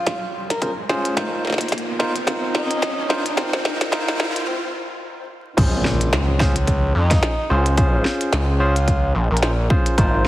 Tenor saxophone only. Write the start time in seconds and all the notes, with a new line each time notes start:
Already playing: F4
0.50 A#4
0.62 A#4
2.54 D#4
3.36 C4
3.52 C4
4.47 C4
4.64 C4
6.95 D#4
8.60 F4
9.31 A#4
9.42 A#4